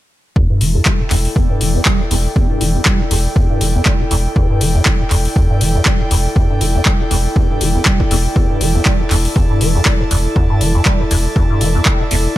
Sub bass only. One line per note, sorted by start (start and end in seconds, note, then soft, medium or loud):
0.61 0.77 E1 loud
1.11 1.27 E1 medium
1.61 1.77 E1 loud
2.11 2.27 E1 loud
2.61 2.77 E1 loud
3.11 3.27 E1 medium
3.61 3.77 E1 loud
4.11 4.27 E1 loud
4.61 4.77 E1 loud
5.11 5.27 E1 medium
5.61 5.77 E1 loud
6.11 6.27 E1 loud
6.61 6.77 E1 medium
7.11 7.27 E1 medium
7.61 7.77 E1 medium
8.11 8.27 E1 medium
8.61 8.77 E1 loud
9.11 9.27 E1 medium
9.61 9.77 E1 loud
10.11 10.27 E1 loud
10.61 10.77 E1 medium
11.11 11.27 E1 medium
11.61 11.77 E1 loud
12.11 12.27 E1 loud